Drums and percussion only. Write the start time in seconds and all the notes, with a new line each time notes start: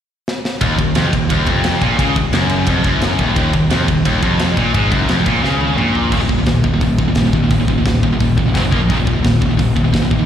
0.28 snare
0.45 snare
0.61 kick, ride
0.79 kick, ride
0.95 snare, ride
1.13 kick, ride
1.30 kick, ride
1.46 kick, ride
1.64 snare, ride
1.81 kick, ride
1.99 kick, ride
2.16 kick, ride
2.33 snare, ride
2.50 ride
2.67 kick, ride
2.84 kick, ride
3.02 snare, ride
3.19 kick, ride
3.36 kick, ride
3.53 kick, ride
3.70 snare, ride
3.88 kick, ride
4.05 kick, ride
4.23 kick, ride
4.39 snare, ride
4.57 kick, ride
4.74 kick, ride
4.92 kick, ride
5.09 snare, ride
5.26 kick, ride
5.45 snare
5.61 high tom
5.78 mid tom
5.95 floor tom
6.12 kick, crash
6.29 kick
6.46 kick, snare, open hi-hat
6.64 kick
6.81 kick, open hi-hat
6.99 kick
7.15 kick, snare, open hi-hat
7.33 kick
7.51 kick, open hi-hat
7.68 kick
7.86 kick, snare, open hi-hat
8.03 kick
8.21 kick, open hi-hat
8.38 kick
8.55 kick, snare, open hi-hat
8.72 kick
8.90 kick, open hi-hat
9.07 kick
9.25 kick, snare, open hi-hat
9.42 kick
9.59 kick, open hi-hat
9.77 kick
9.94 kick, snare, open hi-hat
10.11 kick